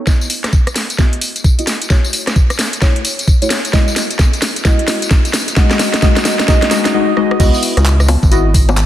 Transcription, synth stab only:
0.07 0.97 B3 medium
0.07 0.97 E4 medium
0.07 0.97 F#4 medium
0.99 1.12 B3 medium
0.99 1.12 E4 medium
0.99 1.11 F#4 medium
0.99 1.12 D#5 loud
1.59 1.66 B3 medium
1.59 1.66 E4 medium
1.59 1.66 F#4 medium
1.59 1.66 D#5 medium
1.90 2.80 A3 medium
1.90 2.80 E4 medium
1.90 2.80 F#4 medium
1.90 2.80 C#5 medium
2.82 2.95 A3 medium
2.82 2.95 E4 medium
2.82 2.95 F#4 medium
2.82 2.95 C#5 loud
3.42 3.49 A3 medium
3.42 3.49 E4 medium
3.42 3.49 F#4 medium
3.42 3.49 C#5 medium
3.73 4.63 G#3 medium
3.73 4.63 E4 medium
3.73 4.63 F#4 medium
3.73 4.63 D#5 medium
4.65 5.55 G#3 medium
4.65 5.55 E4 medium
4.65 5.55 F#4 medium
4.65 5.55 D#5 medium
5.56 6.01 G#3 medium
5.56 6.01 D#4 medium
5.56 6.01 F#4 medium
5.56 6.01 D#5 medium
6.02 6.47 G#3 medium
6.02 6.47 D#4 medium
6.02 6.47 F#4 medium
6.02 6.47 D#5 loud
6.48 6.70 G#3 medium
6.48 6.70 D#4 medium
6.48 6.70 F#4 medium
6.48 6.70 D#5 loud
6.71 6.93 G#3 medium
6.71 6.93 D#4 medium
6.71 6.93 F#4 medium
6.71 6.93 D#5 loud
6.94 7.16 G#3 medium
6.94 7.16 D#4 medium
6.94 7.16 F#4 medium
6.94 7.16 D#5 loud
7.17 7.38 G#3 medium
7.17 7.38 D#4 medium
7.17 7.38 F#4 medium
7.17 7.38 D#5 medium
7.40 8.29 B3 medium
7.40 8.29 E4 medium
7.40 8.29 F#4 medium
7.40 8.29 D#5 loud
8.31 8.44 B3 loud
8.31 8.44 E4 medium
8.31 8.44 F#4 medium
8.31 8.44 D#5 loud

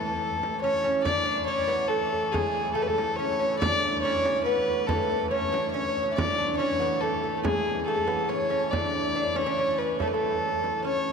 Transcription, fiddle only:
0.00 0.58 A4 medium
0.61 1.01 C#5 loud
1.04 1.44 D5 medium
1.46 1.89 C#5 medium
1.88 2.33 A4 medium
2.32 2.73 G#4 medium
2.74 2.84 A4 medium
2.82 2.89 B4 medium
2.87 3.18 A4 medium
3.16 3.59 C#5 medium
3.59 4.00 D5 loud
4.02 4.42 C#5 medium
4.44 4.89 B4 medium
4.87 5.29 A4 medium
5.30 5.70 C#5 medium
5.71 6.12 C#5 medium
6.15 6.55 D5 medium
6.57 7.02 C#5 medium
7.01 7.43 A4 medium
7.44 7.84 G#4 medium
7.86 8.30 A4 medium
8.29 8.72 C#5 medium
8.71 9.37 D5 medium
9.36 9.80 C#5 medium
9.78 10.00 B4 medium
10.01 10.09 A4 medium
10.08 10.15 B4 medium
10.13 10.84 A4 medium
10.84 11.12 C#5 medium

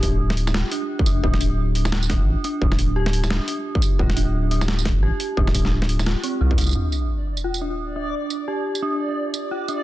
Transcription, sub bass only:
0.00 0.64 D1 loud
1.06 1.22 F1 medium
1.24 2.21 D1 loud
2.20 2.36 A1 medium
2.62 3.39 D1 loud
3.99 4.97 D1 loud
4.96 5.11 A1 medium
5.37 6.15 D1 loud
6.41 6.57 C2 loud
6.58 6.74 C2 medium

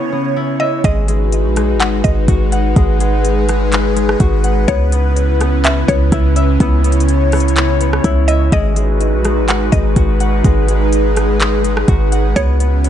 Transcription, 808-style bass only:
0.84 1.46 G#1 loud
1.44 1.76 A#1 loud
1.74 2.03 G#1 loud
2.05 2.27 G#1 loud
2.28 2.74 G#1 loud
2.76 4.16 G#1 loud
4.20 4.66 G#1 loud
4.68 5.84 C#2 loud
5.89 6.11 C#2 loud
6.12 6.58 C#2 loud
6.60 8.00 C#2 loud
8.04 8.50 C#2 loud
8.52 9.14 G#1 loud
9.12 9.44 A#1 loud
9.42 9.71 G#1 loud
9.73 9.96 G#1 loud
9.96 10.42 G#1 loud
10.45 11.84 G#1 loud
11.88 12.34 G#1 loud
12.36 12.89 C#2 loud

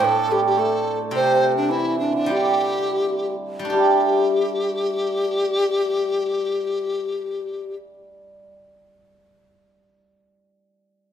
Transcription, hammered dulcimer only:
0.00 0.57 A3 medium
0.00 3.87 C4 medium
0.00 3.16 D4 medium
0.29 0.63 G3 medium
0.57 3.63 A3 medium
1.11 2.19 C3 medium
1.69 2.19 E3 medium
2.13 7.33 D3 medium
2.30 3.70 G3 medium
3.64 8.07 A3 soft
3.73 8.48 G3 medium

